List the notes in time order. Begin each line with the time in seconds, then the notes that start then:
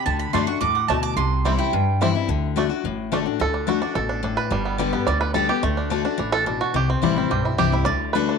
0.06 D2 D3 A5
0.19 B5
0.33 F#2 D3 A3 D4 F#4 C6
0.47 D4 F#4 C#6
0.61 E2 A2 D6
0.75 F#5
0.88 D2 B2 A3 D4 A5
1.03 D6
1.16 C2 C3 C6
1.45 E3 G3 C4 E4
1.59 C4 E4 G5
1.72 G2
2.01 E3 G3 C4 E4
2.15 C4 E4
2.28 D2 D3
2.56 D3 A3 D4 F#4
2.69 D4 F#4
2.84 A1 A2
3.12 D3 A3 D4 F#4
3.26 D4 F#4
3.40 D2 D3 A4
3.54 D4
3.67 D3 A3 D4 F#4
3.82 D4 F#4
3.95 A1 B2 A4
4.09 D4
4.23 A2 D4
4.37 B4
4.50 G1 G2 G3
4.65 B3
4.78 D3 G3 B3 G4
4.93 B3 G4
5.07 D2 D3 D5
5.21 B4
5.34 D3 G3 B3 G4 A4
5.49 B3 G4
5.63 D2 D3 A3
5.77 D4
5.90 D3 A3 D4 F#4
6.04 D4 F#4
6.18 A1 E3 D4
6.32 A4
6.46 B2 D4
6.61 F#4
6.74 C2 C3 G4
6.90 C4
7.02 A1 E3 G3 C4 E4
7.16 C4 E4
7.30 B1 G2 G4
7.45 E4
7.58 C2 E3 G3 C4 E4 G4
7.72 C4 E4
7.85 D2 D3 D5
8.13 D3 A3 D4 F#4 B4
8.29 D4